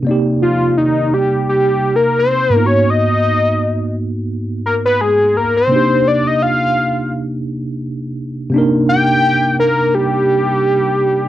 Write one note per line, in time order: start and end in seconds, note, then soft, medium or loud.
0.03 2.47 C3 medium
0.03 2.48 A#3 medium
0.07 2.50 D#4 medium
0.07 2.49 D5 medium
0.11 2.51 G4 medium
0.42 0.74 F4 medium
0.77 1.15 D#4 medium
1.14 1.48 G4 medium
1.49 1.97 G4 medium
1.96 2.19 A#4 medium
2.19 2.54 C5 loud
2.50 5.30 G#2 medium
2.50 5.31 A#3 medium
2.54 5.32 B3 soft
2.54 5.33 D#4 medium
2.54 2.68 A#4 loud
2.58 2.63 F4 soft
2.65 5.37 F#4 medium
2.65 2.92 C#5 loud
2.90 3.95 D#5 loud
4.66 4.74 A#4 medium
4.86 5.02 B4 medium
5.01 5.38 G#4 medium
5.37 5.56 A#4 medium
5.57 6.09 C5 loud
5.68 8.48 C3 medium
5.68 8.48 A#3 medium
5.72 8.50 D4 medium
5.72 8.51 D#4 medium
5.72 8.52 G4 medium
6.08 6.29 D5 medium
6.27 6.44 D#5 loud
6.42 7.12 F5 loud
8.50 11.29 C3 medium
8.50 11.29 A#3 medium
8.54 11.29 D4 medium
8.54 11.29 D#4 medium
8.58 11.29 A#4 medium
8.89 9.55 G5 loud
9.60 9.96 A#4 medium
9.95 11.29 G4 medium